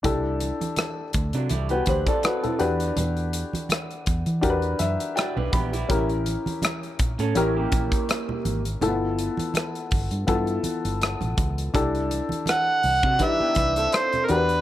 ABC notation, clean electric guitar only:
X:1
M:4/4
L:1/16
Q:"Swing 16ths" 1/4=82
K:Clyd
V:1 name="Clean electric guitar"
z6 z [F,D] [G,E] [B,G] [DB] [CA]3 z2 | z12 [Fd] [DB] [B,G] [G,E]- | [G,E] z6 [^CA] [C_B] [_B,G]6 z | z16 |
z6 z [F,D] [G,E] [B,G] [DB] [CA]3 z2 |]